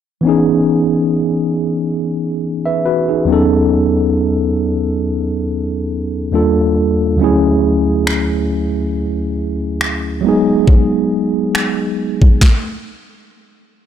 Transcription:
0.21 E3 B3 C#4
0.27 D#4 G#4
2.66 B4 E5
2.85 F#4 B4
3.09 D#4 G#4
3.25 D#2 F#3 B3
3.29 C#4 D#4 A4
6.32 D#2 G3 A#3 D4 F4 A4
7.16 D2 F#3 A3
7.21 C#4 E4 G#4
8.07 finger snap
9.81 finger snap
10.21 F#3 G#3 B3
10.26 D#4 G#4
10.68 kick
11.55 finger snap
12.22 kick
12.41 kick, snare

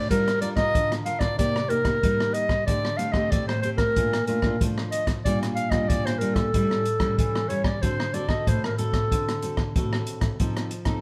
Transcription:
0.10 G3 D4 F4 A#4, kick, closed hi-hat
0.28 cross-stick, closed hi-hat
0.41 D4 F4 A#4 D5, closed hi-hat
0.56 F4 A#4 D#5, kick, cross-stick, closed hi-hat
0.75 D3, kick, closed hi-hat
0.92 cross-stick, closed hi-hat
1.05 D4 F4 A#4 F5, closed hi-hat
1.20 D5, kick, cross-stick, closed hi-hat
1.38 C3 A#3 D#4 G4 D5, kick, closed hi-hat
1.56 cross-stick
1.69 A#3 D#4 G4 A#4, closed hi-hat
1.84 A#3 D#4 G4, kick, cross-stick, closed hi-hat
2.03 G3 A#3 D#4 G4, kick, closed hi-hat
2.20 cross-stick
2.34 D#5, closed hi-hat
2.49 kick, cross-stick
2.66 D3 A3 C4 G4 D5, kick, closed hi-hat
2.85 cross-stick
2.97 A3 C4 G4 F5, closed hi-hat
3.12 A3 C4 G4 D#5, kick, cross-stick
3.31 A2 D5, kick, closed hi-hat
3.48 C5, cross-stick
3.62 A3 C4 G4 C5, closed hi-hat
3.77 A#4, kick, cross-stick, closed hi-hat
3.96 A#2 A3 D4 F4, kick, closed hi-hat
4.13 cross-stick, closed hi-hat
4.27 A3 D4 F4 A#4, closed hi-hat
4.42 A3 D4 F4, kick, cross-stick
4.60 F3 A3 D4 F4, kick, closed hi-hat
4.78 cross-stick
4.91 D#5, closed hi-hat
5.07 kick, cross-stick, closed hi-hat
5.25 A#2 G3 D4 F4 D5, kick, closed hi-hat
5.43 cross-stick, closed hi-hat
5.55 F5, closed hi-hat
5.70 G3 D4 F4 D#5, kick, cross-stick, closed hi-hat
5.88 A#2 D5, kick, closed hi-hat
6.06 C5, cross-stick, closed hi-hat
6.19 G3 D4 F4 A#4, closed hi-hat
6.34 A4, kick, cross-stick, closed hi-hat
6.54 A2 G3 C#4 E4, kick, closed hi-hat
6.71 cross-stick
6.85 closed hi-hat
7.00 G3 C#4 E4, kick, cross-stick, closed hi-hat
7.18 E3 A4, kick, closed hi-hat
7.35 cross-stick
7.49 G3 C#4 E4 C#5, closed hi-hat
7.64 D5, kick, cross-stick
7.82 D3 C4 F#4 A4 C5, kick, closed hi-hat
8.00 cross-stick
8.13 C4 F#4 A4 D5, closed hi-hat
8.29 C4 F#4 A4 D#5, kick, cross-stick
8.47 A2 C5, kick, closed hi-hat
8.64 A#4, cross-stick
8.78 C4 F#4 A4, closed hi-hat
8.93 kick, cross-stick, closed hi-hat
9.12 D3, kick, closed hi-hat
9.29 cross-stick, closed hi-hat
9.42 C4 F#4 A4, closed hi-hat
9.57 kick, cross-stick
9.76 A2 C4 F#4 A4, kick, closed hi-hat
9.93 cross-stick
10.07 closed hi-hat
10.21 kick, cross-stick, closed hi-hat
10.40 F3 C4 D#4 A4, kick, closed hi-hat
10.57 cross-stick, closed hi-hat
10.71 closed hi-hat
10.85 C4 D#4 A4, kick, cross-stick, closed hi-hat

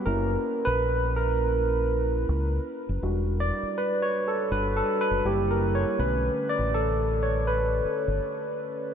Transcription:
0.06 F#1 A#3 C#4 E4 A#4
0.65 A#1 B4
1.16 A#4
2.29 C#2
2.89 F#1
3.03 E1 G3 D4 F#4
3.40 D5
3.63 muted fingered electric bass stroke
3.78 B4
4.02 C#5
4.28 A4
4.51 G1 G3 D4 F#4 B4
4.77 A4
5.01 B4
5.11 F#1
5.25 F#1 G3 A#3 E4 G4
5.51 A#4
5.75 C#5
5.98 B1 D3 A3 C#4 B4
6.49 D5
6.59 A1
6.74 A4
7.23 C#5
7.47 B4
7.85 muted fingered electric bass stroke
8.08 G1

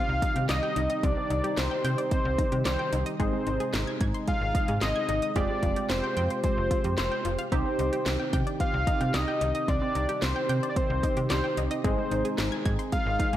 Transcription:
Already playing: C3 D#3 G3 C4 D#4 G4 F5
0.09 C2
0.22 D#4, kick, closed hi-hat
0.36 C3 G4, closed hi-hat
0.49 C2 D5 D#5, snare, closed hi-hat
0.63 G5
0.76 C2 D#4, closed hi-hat
0.90 D#5, closed hi-hat
1.03 C2 C4 D5, kick, closed hi-hat
1.17 C4
1.30 C2 D#4, closed hi-hat
1.44 G4, closed hi-hat
1.57 C2 C5, snare, closed hi-hat
1.71 G5
1.84 C3 G5, closed hi-hat
1.98 D5, closed hi-hat
2.11 C4 C5, kick, closed hi-hat
2.25 C2
2.38 D#4, kick, closed hi-hat
2.52 C3 G4, closed hi-hat
2.65 C2 C5 D5, snare, closed hi-hat
2.79 G5
2.93 C2 D#4, closed hi-hat
3.06 D#5, closed hi-hat
3.20 G#1 G#3 C4 D#4 G#4 C5, kick, closed hi-hat
3.33 G#3
3.47 G#1 D#4, closed hi-hat
3.60 G#4, closed hi-hat
3.74 G#1, snare, closed hi-hat
3.87 G#6
4.01 G#2 G#6, kick, closed hi-hat
4.14 C6, closed hi-hat
4.28 G#3 F5, kick, closed hi-hat
4.41 G#1
4.55 D#4, kick, closed hi-hat
4.68 G#2 G#4, closed hi-hat
4.81 G#1 D#5 C6, snare, closed hi-hat
4.96 G#6
5.09 G#1 D#4, closed hi-hat
5.22 D#6, closed hi-hat
5.36 F1 G#3 C4 F4 G4 D5, kick, closed hi-hat
5.50 G#3
5.63 F1 F4, kick, closed hi-hat
5.76 G4, closed hi-hat
5.90 F1 C5, snare, closed hi-hat
6.04 G5
6.17 F2 G5, closed hi-hat
6.30 C5, closed hi-hat
6.44 G#3 C5, kick, closed hi-hat
6.57 F1
6.71 F4, kick, closed hi-hat
6.84 F2 G4, closed hi-hat
6.98 F1 C5, snare, closed hi-hat
7.12 G5
7.25 F1 F4, closed hi-hat
7.39 F5, closed hi-hat
7.52 C2 C3 D#3 C4 D#4 G4 C5, kick, closed hi-hat
7.66 C4
7.79 C2 D#4, closed hi-hat
7.93 G4, closed hi-hat
8.06 C2, snare, closed hi-hat
8.20 G5
8.33 C3 G5, kick, closed hi-hat
8.47 D5, closed hi-hat
8.60 C4 F5, kick, closed hi-hat
8.74 C2
8.87 D#4, kick, closed hi-hat
9.01 C3 G4, closed hi-hat
9.14 C2 D5 D#5, snare, closed hi-hat
9.28 G5
9.41 C2 D#4, closed hi-hat
9.55 D#5, closed hi-hat
9.68 C2 C4 D5, kick, closed hi-hat
9.82 C4
9.95 C2 D#4, closed hi-hat
10.09 G4, closed hi-hat
10.22 C2 C5, snare, closed hi-hat
10.36 G5
10.49 C3 G5, closed hi-hat
10.63 D5, closed hi-hat
10.69 D5
10.76 C4 C5, kick, closed hi-hat
10.90 C2
11.03 D#4, kick, closed hi-hat
11.17 C3 G4, closed hi-hat
11.30 C2 C5 D5, snare, closed hi-hat
11.44 G5
11.57 C2 D#4, closed hi-hat
11.71 D#5, closed hi-hat
11.84 G#1 G#3 C4 D#4 G#4 C5, kick, closed hi-hat
11.98 G#3
12.11 G#1 D#4, closed hi-hat
12.25 G#4, closed hi-hat
12.38 G#1, snare, closed hi-hat
12.52 G#6
12.66 G#2 G#6, kick, closed hi-hat
12.79 C6, closed hi-hat
12.92 G#3 F5, kick, closed hi-hat
13.06 G#1
13.19 D#4, kick, closed hi-hat
13.33 G#2 G#4, closed hi-hat

